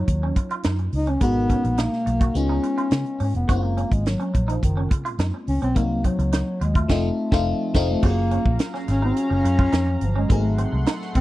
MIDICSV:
0, 0, Header, 1, 8, 480
1, 0, Start_track
1, 0, Tempo, 567644
1, 1027, Time_signature, 4, 2, 24, 8
1, 9477, End_track
2, 0, Start_track
2, 0, Title_t, "Analog synth pad"
2, 0, Program_c, 0, 89
2, 6800, Note_on_c, 0, 77, 81
2, 6800, Note_on_c, 0, 82, 86
2, 6801, Note_on_c, 0, 54, 74
2, 8694, Note_off_c, 0, 82, 0
2, 8695, Note_off_c, 0, 54, 0
2, 8695, Note_off_c, 0, 77, 0
2, 8703, Note_on_c, 0, 78, 70
2, 8703, Note_on_c, 0, 84, 87
2, 8705, Note_on_c, 0, 57, 76
2, 9477, Note_off_c, 0, 57, 0
2, 9477, Note_off_c, 0, 78, 0
2, 9477, Note_off_c, 0, 84, 0
2, 9477, End_track
3, 0, Start_track
3, 0, Title_t, "Clean electric guitar"
3, 0, Program_c, 1, 27
3, 196, Note_on_c, 1, 61, 72
3, 288, Note_off_c, 1, 61, 0
3, 431, Note_on_c, 1, 65, 70
3, 525, Note_off_c, 1, 65, 0
3, 548, Note_on_c, 1, 63, 78
3, 643, Note_off_c, 1, 63, 0
3, 907, Note_on_c, 1, 61, 76
3, 1003, Note_off_c, 1, 61, 0
3, 1022, Note_on_c, 1, 59, 80
3, 1120, Note_off_c, 1, 59, 0
3, 1267, Note_on_c, 1, 61, 78
3, 1363, Note_off_c, 1, 61, 0
3, 1507, Note_on_c, 1, 63, 82
3, 1603, Note_off_c, 1, 63, 0
3, 1868, Note_on_c, 1, 66, 67
3, 1964, Note_off_c, 1, 66, 0
3, 2109, Note_on_c, 1, 63, 75
3, 2205, Note_off_c, 1, 63, 0
3, 2348, Note_on_c, 1, 65, 69
3, 2444, Note_off_c, 1, 65, 0
3, 2707, Note_on_c, 1, 61, 68
3, 2804, Note_off_c, 1, 61, 0
3, 2950, Note_on_c, 1, 66, 83
3, 3046, Note_off_c, 1, 66, 0
3, 3191, Note_on_c, 1, 61, 72
3, 3287, Note_off_c, 1, 61, 0
3, 3549, Note_on_c, 1, 61, 66
3, 3645, Note_off_c, 1, 61, 0
3, 3788, Note_on_c, 1, 63, 80
3, 3885, Note_off_c, 1, 63, 0
3, 4034, Note_on_c, 1, 61, 73
3, 4129, Note_off_c, 1, 61, 0
3, 4271, Note_on_c, 1, 65, 77
3, 4367, Note_off_c, 1, 65, 0
3, 4393, Note_on_c, 1, 63, 76
3, 4488, Note_off_c, 1, 63, 0
3, 4753, Note_on_c, 1, 61, 73
3, 4848, Note_off_c, 1, 61, 0
3, 4874, Note_on_c, 1, 58, 90
3, 4969, Note_off_c, 1, 58, 0
3, 5115, Note_on_c, 1, 60, 73
3, 5209, Note_off_c, 1, 60, 0
3, 5352, Note_on_c, 1, 63, 87
3, 5448, Note_off_c, 1, 63, 0
3, 5714, Note_on_c, 1, 65, 64
3, 5809, Note_off_c, 1, 65, 0
3, 6795, Note_on_c, 1, 66, 91
3, 6889, Note_off_c, 1, 66, 0
3, 7031, Note_on_c, 1, 61, 70
3, 7127, Note_off_c, 1, 61, 0
3, 7390, Note_on_c, 1, 61, 67
3, 7486, Note_off_c, 1, 61, 0
3, 7630, Note_on_c, 1, 63, 78
3, 7726, Note_off_c, 1, 63, 0
3, 7867, Note_on_c, 1, 61, 67
3, 7964, Note_off_c, 1, 61, 0
3, 8107, Note_on_c, 1, 65, 74
3, 8204, Note_off_c, 1, 65, 0
3, 8223, Note_on_c, 1, 63, 81
3, 8322, Note_off_c, 1, 63, 0
3, 8588, Note_on_c, 1, 61, 73
3, 8684, Note_off_c, 1, 61, 0
3, 8706, Note_on_c, 1, 58, 89
3, 8803, Note_off_c, 1, 58, 0
3, 8950, Note_on_c, 1, 60, 81
3, 9045, Note_off_c, 1, 60, 0
3, 9190, Note_on_c, 1, 63, 99
3, 9285, Note_off_c, 1, 63, 0
3, 9477, End_track
4, 0, Start_track
4, 0, Title_t, "FM electric piano"
4, 0, Program_c, 2, 5
4, 0, Control_c, 2, 64, 127
4, 0, Note_on_c, 2, 54, 63
4, 0, Note_on_c, 2, 58, 58
4, 0, Note_on_c, 2, 61, 55
4, 0, Note_on_c, 2, 63, 58
4, 0, Note_on_c, 2, 65, 61
4, 989, Note_off_c, 2, 54, 0
4, 993, Note_off_c, 2, 58, 0
4, 995, Note_off_c, 2, 61, 0
4, 997, Note_off_c, 2, 63, 0
4, 999, Note_off_c, 2, 65, 0
4, 1020, Note_on_c, 2, 56, 61
4, 1026, Note_on_c, 2, 70, 59
4, 1033, Note_on_c, 2, 47, 57
4, 1036, Note_on_c, 2, 63, 60
4, 1037, Control_c, 2, 64, 0
4, 1042, Note_on_c, 2, 66, 71
4, 1167, Control_c, 2, 64, 127
4, 1966, Note_off_c, 2, 56, 0
4, 1969, Note_off_c, 2, 70, 0
4, 1973, Note_off_c, 2, 47, 0
4, 1974, Note_off_c, 2, 63, 0
4, 1977, Note_off_c, 2, 66, 0
4, 1980, Note_on_c, 2, 56, 64
4, 1986, Note_on_c, 2, 59, 60
4, 1992, Note_on_c, 2, 61, 52
4, 1999, Note_on_c, 2, 63, 57
4, 2001, Note_on_c, 2, 65, 66
4, 2002, Control_c, 2, 64, 0
4, 2148, Control_c, 2, 64, 127
4, 2927, Note_off_c, 2, 56, 0
4, 2930, Note_off_c, 2, 59, 0
4, 2933, Note_off_c, 2, 61, 0
4, 2936, Note_off_c, 2, 63, 0
4, 2938, Note_off_c, 2, 65, 0
4, 2939, Note_on_c, 2, 56, 60
4, 2944, Note_on_c, 2, 58, 61
4, 2948, Note_on_c, 2, 60, 56
4, 2953, Note_on_c, 2, 61, 62
4, 2959, Note_on_c, 2, 64, 62
4, 2961, Control_c, 2, 64, 0
4, 3010, Note_off_c, 2, 64, 0
4, 3014, Note_on_c, 2, 65, 64
4, 3093, Control_c, 2, 64, 127
4, 4833, Note_off_c, 2, 56, 0
4, 4835, Note_off_c, 2, 58, 0
4, 4837, Note_off_c, 2, 60, 0
4, 4840, Note_off_c, 2, 61, 0
4, 4858, Note_on_c, 2, 54, 66
4, 4863, Note_on_c, 2, 58, 58
4, 4868, Note_on_c, 2, 60, 57
4, 4870, Note_off_c, 2, 65, 0
4, 4876, Note_on_c, 2, 63, 58
4, 4880, Note_on_c, 2, 66, 69
4, 4885, Control_c, 2, 64, 0
4, 5026, Control_c, 2, 64, 127
4, 5806, Note_off_c, 2, 54, 0
4, 5809, Note_off_c, 2, 58, 0
4, 5811, Note_off_c, 2, 60, 0
4, 5816, Note_off_c, 2, 63, 0
4, 5817, Note_off_c, 2, 66, 0
4, 5821, Note_on_c, 2, 53, 105
4, 5828, Note_on_c, 2, 57, 96
4, 5832, Note_on_c, 2, 60, 97
4, 5837, Note_on_c, 2, 63, 90
4, 5841, Note_on_c, 2, 65, 88
4, 5844, Control_c, 2, 64, 0
4, 5989, Note_off_c, 2, 53, 0
4, 5993, Note_off_c, 2, 57, 0
4, 5994, Control_c, 2, 64, 127
4, 5995, Note_off_c, 2, 60, 0
4, 5998, Note_off_c, 2, 63, 0
4, 6001, Note_off_c, 2, 65, 0
4, 6185, Note_on_c, 2, 53, 104
4, 6189, Note_on_c, 2, 57, 93
4, 6193, Note_on_c, 2, 60, 101
4, 6200, Note_on_c, 2, 63, 97
4, 6203, Note_on_c, 2, 65, 105
4, 6351, Note_off_c, 2, 53, 0
4, 6354, Note_off_c, 2, 57, 0
4, 6356, Note_off_c, 2, 60, 0
4, 6360, Note_off_c, 2, 63, 0
4, 6362, Note_off_c, 2, 65, 0
4, 6544, Note_on_c, 2, 53, 98
4, 6548, Note_on_c, 2, 57, 105
4, 6554, Note_on_c, 2, 60, 97
4, 6560, Note_on_c, 2, 63, 112
4, 6567, Note_on_c, 2, 65, 101
4, 6711, Note_off_c, 2, 53, 0
4, 6713, Note_off_c, 2, 57, 0
4, 6716, Note_off_c, 2, 60, 0
4, 6720, Note_off_c, 2, 63, 0
4, 6724, Note_off_c, 2, 65, 0
4, 6786, Note_on_c, 2, 54, 61
4, 6788, Note_on_c, 2, 57, 43
4, 6796, Note_on_c, 2, 61, 56
4, 6802, Note_on_c, 2, 65, 66
4, 6803, Note_on_c, 2, 68, 69
4, 6804, Control_c, 2, 64, 0
4, 6844, Note_on_c, 2, 58, 61
4, 6845, Note_off_c, 2, 57, 0
4, 6977, Control_c, 2, 64, 127
4, 8673, Note_off_c, 2, 54, 0
4, 8678, Note_off_c, 2, 61, 0
4, 8681, Note_off_c, 2, 65, 0
4, 8681, Note_off_c, 2, 68, 0
4, 8700, Note_on_c, 2, 54, 68
4, 8702, Note_off_c, 2, 58, 0
4, 8707, Note_on_c, 2, 57, 62
4, 8712, Note_on_c, 2, 60, 60
4, 8718, Note_on_c, 2, 63, 62
4, 8719, Control_c, 2, 64, 0
4, 8722, Note_on_c, 2, 68, 69
4, 8868, Control_c, 2, 64, 127
4, 9477, Note_off_c, 2, 54, 0
4, 9477, Note_off_c, 2, 57, 0
4, 9477, Note_off_c, 2, 60, 0
4, 9477, Note_off_c, 2, 63, 0
4, 9477, Note_off_c, 2, 68, 0
4, 9477, End_track
5, 0, Start_track
5, 0, Title_t, "Bass clarinet"
5, 0, Program_c, 3, 71
5, 0, Note_on_c, 3, 54, 77
5, 567, Note_off_c, 3, 54, 0
5, 814, Note_on_c, 3, 63, 97
5, 928, Note_on_c, 3, 61, 88
5, 941, Note_off_c, 3, 63, 0
5, 1032, Note_off_c, 3, 61, 0
5, 1037, Note_on_c, 3, 59, 106
5, 1527, Note_on_c, 3, 58, 114
5, 1540, Note_off_c, 3, 59, 0
5, 2001, Note_on_c, 3, 61, 105
5, 2014, Note_off_c, 3, 58, 0
5, 2716, Note_off_c, 3, 61, 0
5, 2729, Note_on_c, 3, 61, 92
5, 2832, Note_off_c, 3, 61, 0
5, 2841, Note_on_c, 3, 59, 80
5, 2958, Note_on_c, 3, 58, 93
5, 2971, Note_off_c, 3, 59, 0
5, 3325, Note_on_c, 3, 56, 90
5, 3338, Note_off_c, 3, 58, 0
5, 3442, Note_on_c, 3, 54, 105
5, 3455, Note_off_c, 3, 56, 0
5, 3797, Note_off_c, 3, 54, 0
5, 3806, Note_on_c, 3, 53, 85
5, 3911, Note_off_c, 3, 53, 0
5, 3927, Note_on_c, 3, 51, 80
5, 4377, Note_off_c, 3, 51, 0
5, 4641, Note_on_c, 3, 61, 101
5, 4749, Note_off_c, 3, 61, 0
5, 4763, Note_on_c, 3, 60, 102
5, 4881, Note_on_c, 3, 58, 100
5, 4894, Note_off_c, 3, 60, 0
5, 5120, Note_on_c, 3, 54, 86
5, 5133, Note_off_c, 3, 58, 0
5, 5606, Note_on_c, 3, 56, 89
5, 5619, Note_off_c, 3, 54, 0
5, 5723, Note_on_c, 3, 57, 89
5, 5736, Note_off_c, 3, 56, 0
5, 6558, Note_off_c, 3, 57, 0
5, 6571, Note_on_c, 3, 53, 88
5, 6694, Note_on_c, 3, 57, 97
5, 6707, Note_off_c, 3, 53, 0
5, 6808, Note_on_c, 3, 58, 108
5, 6821, Note_off_c, 3, 57, 0
5, 7280, Note_off_c, 3, 58, 0
5, 7530, Note_on_c, 3, 61, 101
5, 7633, Note_off_c, 3, 61, 0
5, 7655, Note_on_c, 3, 61, 122
5, 8493, Note_on_c, 3, 53, 94
5, 8506, Note_off_c, 3, 61, 0
5, 8600, Note_off_c, 3, 53, 0
5, 8605, Note_on_c, 3, 56, 83
5, 8709, Note_off_c, 3, 56, 0
5, 8725, Note_on_c, 3, 57, 91
5, 9163, Note_off_c, 3, 57, 0
5, 9438, Note_on_c, 3, 60, 108
5, 9477, Note_off_c, 3, 60, 0
5, 9477, End_track
6, 0, Start_track
6, 0, Title_t, "Fingered electric bass"
6, 0, Program_c, 4, 33
6, 67, Note_on_c, 4, 39, 87
6, 259, Note_off_c, 4, 39, 0
6, 548, Note_on_c, 4, 42, 87
6, 740, Note_off_c, 4, 42, 0
6, 785, Note_on_c, 4, 37, 87
6, 978, Note_off_c, 4, 37, 0
6, 1022, Note_on_c, 4, 32, 98
6, 1313, Note_off_c, 4, 32, 0
6, 1391, Note_on_c, 4, 34, 78
6, 1582, Note_off_c, 4, 34, 0
6, 1748, Note_on_c, 4, 35, 98
6, 1941, Note_off_c, 4, 35, 0
6, 1986, Note_on_c, 4, 37, 89
6, 2180, Note_off_c, 4, 37, 0
6, 2466, Note_on_c, 4, 49, 98
6, 2564, Note_off_c, 4, 49, 0
6, 2709, Note_on_c, 4, 44, 84
6, 2806, Note_off_c, 4, 44, 0
6, 2829, Note_on_c, 4, 29, 86
6, 2926, Note_off_c, 4, 29, 0
6, 2949, Note_on_c, 4, 30, 112
6, 3238, Note_off_c, 4, 30, 0
6, 3311, Note_on_c, 4, 32, 83
6, 3504, Note_off_c, 4, 32, 0
6, 3675, Note_on_c, 4, 34, 91
6, 3866, Note_off_c, 4, 34, 0
6, 3912, Note_on_c, 4, 30, 78
6, 4104, Note_off_c, 4, 30, 0
6, 4386, Note_on_c, 4, 42, 104
6, 4485, Note_off_c, 4, 42, 0
6, 4632, Note_on_c, 4, 37, 93
6, 4729, Note_off_c, 4, 37, 0
6, 4756, Note_on_c, 4, 35, 79
6, 4871, Note_off_c, 4, 35, 0
6, 4871, Note_on_c, 4, 36, 110
6, 5160, Note_off_c, 4, 36, 0
6, 5230, Note_on_c, 4, 37, 87
6, 5423, Note_off_c, 4, 37, 0
6, 5591, Note_on_c, 4, 39, 91
6, 5784, Note_off_c, 4, 39, 0
6, 5829, Note_on_c, 4, 29, 94
6, 5994, Note_off_c, 4, 29, 0
6, 6190, Note_on_c, 4, 29, 107
6, 6355, Note_off_c, 4, 29, 0
6, 6548, Note_on_c, 4, 29, 87
6, 6713, Note_off_c, 4, 29, 0
6, 6789, Note_on_c, 4, 30, 105
6, 7078, Note_off_c, 4, 30, 0
6, 7149, Note_on_c, 4, 34, 81
6, 7246, Note_off_c, 4, 34, 0
6, 7512, Note_on_c, 4, 32, 90
6, 7704, Note_off_c, 4, 32, 0
6, 7870, Note_on_c, 4, 30, 90
6, 7967, Note_off_c, 4, 30, 0
6, 7989, Note_on_c, 4, 42, 96
6, 8182, Note_off_c, 4, 42, 0
6, 8226, Note_on_c, 4, 41, 98
6, 8420, Note_off_c, 4, 41, 0
6, 8469, Note_on_c, 4, 31, 96
6, 8661, Note_off_c, 4, 31, 0
6, 8710, Note_on_c, 4, 32, 114
6, 8998, Note_off_c, 4, 32, 0
6, 9071, Note_on_c, 4, 36, 76
6, 9166, Note_off_c, 4, 36, 0
6, 9429, Note_on_c, 4, 33, 91
6, 9477, Note_off_c, 4, 33, 0
6, 9477, End_track
7, 0, Start_track
7, 0, Title_t, "Muted clean electric guitar strokes"
7, 311, Note_on_c, 9, 29, 42
7, 395, Note_off_c, 9, 29, 0
7, 669, Note_on_c, 9, 29, 42
7, 754, Note_off_c, 9, 29, 0
7, 1386, Note_on_c, 9, 29, 47
7, 1470, Note_off_c, 9, 29, 0
7, 1744, Note_on_c, 9, 29, 40
7, 1829, Note_off_c, 9, 29, 0
7, 2229, Note_on_c, 9, 29, 43
7, 2313, Note_off_c, 9, 29, 0
7, 3070, Note_on_c, 9, 29, 41
7, 3154, Note_off_c, 9, 29, 0
7, 3668, Note_on_c, 9, 29, 43
7, 3753, Note_off_c, 9, 29, 0
7, 4151, Note_on_c, 9, 29, 41
7, 4236, Note_off_c, 9, 29, 0
7, 4516, Note_on_c, 9, 29, 45
7, 4601, Note_off_c, 9, 29, 0
7, 5234, Note_on_c, 9, 29, 49
7, 5318, Note_off_c, 9, 29, 0
7, 5593, Note_on_c, 9, 29, 44
7, 5677, Note_off_c, 9, 29, 0
7, 6913, Note_on_c, 9, 29, 43
7, 6998, Note_off_c, 9, 29, 0
7, 7510, Note_on_c, 9, 29, 44
7, 7594, Note_off_c, 9, 29, 0
7, 7987, Note_on_c, 9, 29, 45
7, 8071, Note_off_c, 9, 29, 0
7, 8345, Note_on_c, 9, 29, 48
7, 8430, Note_off_c, 9, 29, 0
7, 9069, Note_on_c, 9, 29, 48
7, 9153, Note_off_c, 9, 29, 0
7, 9433, Note_on_c, 9, 29, 43
7, 9477, Note_off_c, 9, 29, 0
7, 9477, End_track
8, 0, Start_track
8, 0, Title_t, "Drums"
8, 66, Note_on_c, 9, 36, 85
8, 66, Note_on_c, 9, 42, 86
8, 151, Note_off_c, 9, 36, 0
8, 151, Note_off_c, 9, 42, 0
8, 304, Note_on_c, 9, 42, 89
8, 306, Note_on_c, 9, 36, 93
8, 389, Note_off_c, 9, 42, 0
8, 390, Note_off_c, 9, 36, 0
8, 426, Note_on_c, 9, 42, 49
8, 510, Note_off_c, 9, 42, 0
8, 535, Note_on_c, 9, 42, 77
8, 545, Note_on_c, 9, 38, 112
8, 620, Note_off_c, 9, 42, 0
8, 630, Note_off_c, 9, 38, 0
8, 663, Note_on_c, 9, 42, 36
8, 748, Note_off_c, 9, 42, 0
8, 782, Note_on_c, 9, 46, 63
8, 867, Note_off_c, 9, 46, 0
8, 903, Note_on_c, 9, 42, 48
8, 988, Note_off_c, 9, 42, 0
8, 1019, Note_on_c, 9, 42, 86
8, 1024, Note_on_c, 9, 36, 97
8, 1104, Note_off_c, 9, 42, 0
8, 1109, Note_off_c, 9, 36, 0
8, 1265, Note_on_c, 9, 36, 70
8, 1265, Note_on_c, 9, 42, 70
8, 1349, Note_off_c, 9, 42, 0
8, 1350, Note_off_c, 9, 36, 0
8, 1390, Note_on_c, 9, 42, 54
8, 1475, Note_off_c, 9, 42, 0
8, 1501, Note_on_c, 9, 42, 89
8, 1510, Note_on_c, 9, 38, 97
8, 1585, Note_off_c, 9, 42, 0
8, 1594, Note_off_c, 9, 38, 0
8, 1631, Note_on_c, 9, 38, 37
8, 1715, Note_off_c, 9, 38, 0
8, 1748, Note_on_c, 9, 42, 81
8, 1833, Note_off_c, 9, 42, 0
8, 1867, Note_on_c, 9, 36, 104
8, 1868, Note_on_c, 9, 42, 50
8, 1952, Note_off_c, 9, 36, 0
8, 1953, Note_off_c, 9, 42, 0
8, 1986, Note_on_c, 9, 42, 89
8, 2071, Note_off_c, 9, 42, 0
8, 2228, Note_on_c, 9, 42, 80
8, 2312, Note_off_c, 9, 42, 0
8, 2350, Note_on_c, 9, 42, 41
8, 2435, Note_off_c, 9, 42, 0
8, 2459, Note_on_c, 9, 42, 76
8, 2469, Note_on_c, 9, 38, 110
8, 2543, Note_off_c, 9, 42, 0
8, 2553, Note_off_c, 9, 38, 0
8, 2588, Note_on_c, 9, 42, 37
8, 2672, Note_off_c, 9, 42, 0
8, 2704, Note_on_c, 9, 46, 67
8, 2789, Note_off_c, 9, 46, 0
8, 2831, Note_on_c, 9, 42, 44
8, 2915, Note_off_c, 9, 42, 0
8, 2949, Note_on_c, 9, 42, 79
8, 2950, Note_on_c, 9, 36, 99
8, 3034, Note_off_c, 9, 42, 0
8, 3035, Note_off_c, 9, 36, 0
8, 3192, Note_on_c, 9, 42, 74
8, 3277, Note_off_c, 9, 42, 0
8, 3311, Note_on_c, 9, 36, 87
8, 3318, Note_on_c, 9, 42, 56
8, 3396, Note_off_c, 9, 36, 0
8, 3402, Note_off_c, 9, 42, 0
8, 3431, Note_on_c, 9, 42, 83
8, 3440, Note_on_c, 9, 38, 88
8, 3515, Note_off_c, 9, 42, 0
8, 3524, Note_off_c, 9, 38, 0
8, 3554, Note_on_c, 9, 42, 38
8, 3639, Note_off_c, 9, 42, 0
8, 3675, Note_on_c, 9, 36, 88
8, 3678, Note_on_c, 9, 42, 69
8, 3760, Note_off_c, 9, 36, 0
8, 3762, Note_off_c, 9, 42, 0
8, 3799, Note_on_c, 9, 42, 57
8, 3883, Note_off_c, 9, 42, 0
8, 3913, Note_on_c, 9, 36, 80
8, 3917, Note_on_c, 9, 42, 89
8, 3998, Note_off_c, 9, 36, 0
8, 4002, Note_off_c, 9, 42, 0
8, 4153, Note_on_c, 9, 36, 103
8, 4158, Note_on_c, 9, 42, 84
8, 4237, Note_off_c, 9, 36, 0
8, 4243, Note_off_c, 9, 42, 0
8, 4274, Note_on_c, 9, 42, 46
8, 4359, Note_off_c, 9, 42, 0
8, 4386, Note_on_c, 9, 42, 75
8, 4395, Note_on_c, 9, 38, 110
8, 4470, Note_off_c, 9, 42, 0
8, 4480, Note_off_c, 9, 38, 0
8, 4631, Note_on_c, 9, 46, 69
8, 4716, Note_off_c, 9, 46, 0
8, 4755, Note_on_c, 9, 42, 47
8, 4839, Note_off_c, 9, 42, 0
8, 4870, Note_on_c, 9, 42, 77
8, 4871, Note_on_c, 9, 36, 102
8, 4955, Note_off_c, 9, 42, 0
8, 4956, Note_off_c, 9, 36, 0
8, 5110, Note_on_c, 9, 36, 70
8, 5111, Note_on_c, 9, 42, 65
8, 5195, Note_off_c, 9, 36, 0
8, 5196, Note_off_c, 9, 42, 0
8, 5236, Note_on_c, 9, 42, 49
8, 5321, Note_off_c, 9, 42, 0
8, 5348, Note_on_c, 9, 42, 93
8, 5357, Note_on_c, 9, 38, 90
8, 5432, Note_off_c, 9, 42, 0
8, 5441, Note_off_c, 9, 38, 0
8, 5591, Note_on_c, 9, 42, 74
8, 5676, Note_off_c, 9, 42, 0
8, 5710, Note_on_c, 9, 36, 100
8, 5714, Note_on_c, 9, 42, 50
8, 5795, Note_off_c, 9, 36, 0
8, 5798, Note_off_c, 9, 42, 0
8, 5829, Note_on_c, 9, 49, 75
8, 5830, Note_on_c, 9, 36, 103
8, 5835, Note_on_c, 9, 38, 105
8, 5914, Note_off_c, 9, 36, 0
8, 5914, Note_off_c, 9, 49, 0
8, 5920, Note_off_c, 9, 38, 0
8, 6190, Note_on_c, 9, 36, 106
8, 6195, Note_on_c, 9, 38, 100
8, 6274, Note_off_c, 9, 36, 0
8, 6279, Note_off_c, 9, 38, 0
8, 6548, Note_on_c, 9, 49, 78
8, 6549, Note_on_c, 9, 36, 100
8, 6554, Note_on_c, 9, 38, 99
8, 6633, Note_off_c, 9, 49, 0
8, 6634, Note_off_c, 9, 36, 0
8, 6639, Note_off_c, 9, 38, 0
8, 6787, Note_on_c, 9, 49, 85
8, 6789, Note_on_c, 9, 36, 101
8, 6872, Note_off_c, 9, 49, 0
8, 6874, Note_off_c, 9, 36, 0
8, 7028, Note_on_c, 9, 42, 74
8, 7113, Note_off_c, 9, 42, 0
8, 7150, Note_on_c, 9, 36, 91
8, 7234, Note_off_c, 9, 36, 0
8, 7263, Note_on_c, 9, 42, 95
8, 7272, Note_on_c, 9, 38, 97
8, 7348, Note_off_c, 9, 42, 0
8, 7357, Note_off_c, 9, 38, 0
8, 7395, Note_on_c, 9, 38, 37
8, 7479, Note_off_c, 9, 38, 0
8, 7508, Note_on_c, 9, 42, 77
8, 7515, Note_on_c, 9, 38, 33
8, 7593, Note_off_c, 9, 42, 0
8, 7599, Note_off_c, 9, 38, 0
8, 7750, Note_on_c, 9, 42, 88
8, 7834, Note_off_c, 9, 42, 0
8, 7992, Note_on_c, 9, 42, 82
8, 8076, Note_off_c, 9, 42, 0
8, 8108, Note_on_c, 9, 36, 92
8, 8193, Note_off_c, 9, 36, 0
8, 8223, Note_on_c, 9, 42, 80
8, 8232, Note_on_c, 9, 38, 111
8, 8307, Note_off_c, 9, 42, 0
8, 8317, Note_off_c, 9, 38, 0
8, 8465, Note_on_c, 9, 42, 64
8, 8550, Note_off_c, 9, 42, 0
8, 8709, Note_on_c, 9, 36, 105
8, 8710, Note_on_c, 9, 42, 79
8, 8793, Note_off_c, 9, 36, 0
8, 8794, Note_off_c, 9, 42, 0
8, 8949, Note_on_c, 9, 42, 67
8, 9033, Note_off_c, 9, 42, 0
8, 9186, Note_on_c, 9, 42, 86
8, 9195, Note_on_c, 9, 38, 99
8, 9270, Note_off_c, 9, 42, 0
8, 9279, Note_off_c, 9, 38, 0
8, 9314, Note_on_c, 9, 38, 39
8, 9399, Note_off_c, 9, 38, 0
8, 9430, Note_on_c, 9, 42, 71
8, 9431, Note_on_c, 9, 36, 94
8, 9477, Note_off_c, 9, 36, 0
8, 9477, Note_off_c, 9, 42, 0
8, 9477, End_track
0, 0, End_of_file